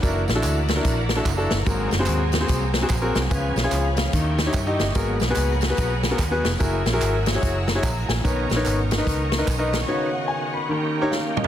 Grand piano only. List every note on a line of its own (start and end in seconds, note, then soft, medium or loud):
0.02 0.22 D4 medium
0.02 0.22 E4 medium
0.02 0.22 F#4 medium
0.02 0.23 A#4 medium
0.35 0.57 D4 medium
0.35 0.57 E4 medium
0.35 0.57 F#4 medium
0.35 0.57 A4 medium
0.76 0.98 D4 medium
0.76 0.98 E4 medium
0.76 0.98 F#4 medium
0.76 0.98 A#4 medium
1.16 1.25 D4 medium
1.16 1.26 E4 medium
1.16 1.25 F#4 medium
1.16 1.26 A4 medium
1.37 1.55 D4 medium
1.37 1.55 E4 medium
1.37 1.56 F#4 medium
1.37 1.55 A4 medium
1.66 2.30 G#2 medium
1.66 1.86 C4 medium
1.66 1.87 F#4 medium
1.66 1.87 G#4 medium
1.66 1.87 A#4 medium
1.99 2.21 C4 loud
1.99 2.22 F#4 medium
1.99 2.22 G#4 medium
1.99 2.22 C5 loud
2.40 2.62 C4 medium
2.40 2.62 F#4 medium
2.40 2.63 G#4 medium
2.40 2.63 C5 medium
2.82 2.90 C4 medium
2.82 2.91 F#4 medium
2.82 2.91 G#4 medium
2.82 2.91 C5 medium
3.01 3.19 C4 medium
3.01 3.20 F#4 medium
3.01 3.20 G#4 medium
3.01 3.20 A#4 medium
3.30 3.94 C#3 medium
3.30 3.51 C#4 medium
3.30 3.51 F4 medium
3.30 3.51 G#4 medium
3.30 3.51 B4 medium
3.63 3.85 C#4 medium
3.63 3.86 F4 medium
3.63 3.86 G#4 medium
3.63 3.70 C#5 loud
3.72 3.97 C#5 medium
3.98 4.37 F5 medium
4.13 4.76 D#3 medium
4.46 4.55 D#4 medium
4.46 4.55 E4 medium
4.46 4.55 G4 medium
4.46 4.55 C#5 medium
4.67 4.84 D#4 medium
4.67 4.84 E4 medium
4.67 4.84 G4 medium
4.67 4.84 D#5 medium
4.95 5.58 G#2 medium
4.95 5.15 B3 medium
4.95 5.15 F#4 medium
4.95 5.15 G#4 medium
4.95 5.16 A#4 medium
5.30 5.51 B3 medium
5.30 5.51 F#4 medium
5.30 5.51 G#4 medium
5.30 5.51 B4 loud
5.69 5.91 B3 medium
5.69 5.91 F#4 medium
5.69 5.91 G#4 medium
5.69 5.91 B4 medium
6.11 6.19 B3 medium
6.11 6.19 F#4 medium
6.11 6.20 G#4 medium
6.11 6.19 A#4 medium
6.31 6.48 B3 medium
6.31 6.49 F#4 medium
6.31 6.49 G#4 medium
6.31 6.49 B4 loud
6.59 6.80 E4 medium
6.59 6.80 F#4 medium
6.59 6.80 G#4 medium
6.59 6.80 A#4 medium
6.93 7.14 E4 medium
6.93 7.14 F#4 medium
6.93 7.15 G#4 medium
6.93 7.15 A#4 loud
7.34 7.56 E4 medium
7.34 7.56 F#4 medium
7.34 7.56 G#4 medium
7.34 7.56 C#5 medium
7.75 7.83 E4 medium
7.75 7.83 F#4 medium
7.75 7.84 G#4 medium
7.75 7.84 C#5 medium
7.83 8.07 A#5 medium
8.09 8.48 G#5 medium
8.24 8.87 B2 medium
8.24 8.44 D#4 medium
8.24 8.44 A#4 medium
8.24 8.44 B4 medium
8.24 8.44 C#5 medium
8.56 8.78 D#4 medium
8.56 8.78 A#4 medium
8.56 8.78 B4 medium
8.56 8.78 C#5 loud
8.98 9.19 D#4 medium
8.98 9.20 A#4 medium
8.98 9.20 B4 medium
8.98 9.20 D#5 medium
9.38 9.47 D#4 medium
9.38 9.47 A#4 medium
9.38 9.48 B4 medium
9.38 9.47 D#5 medium
9.59 9.76 D#4 medium
9.59 9.76 A#4 medium
9.59 9.77 B4 medium
9.59 9.77 D#5 medium
9.88 10.51 C#3 medium
9.88 10.08 D#4 medium
9.88 10.08 F#4 medium
9.88 10.08 B4 medium
9.88 10.08 C#5 medium
10.13 10.28 F#5 medium
10.28 10.53 G#5 medium
10.54 10.93 B5 medium
10.69 11.32 D#3 medium
11.02 11.11 D#4 medium
11.02 11.11 G4 medium
11.02 11.11 A#4 medium
11.02 11.11 C#5 medium
11.11 11.35 F5 medium
11.36 11.47 D#5 medium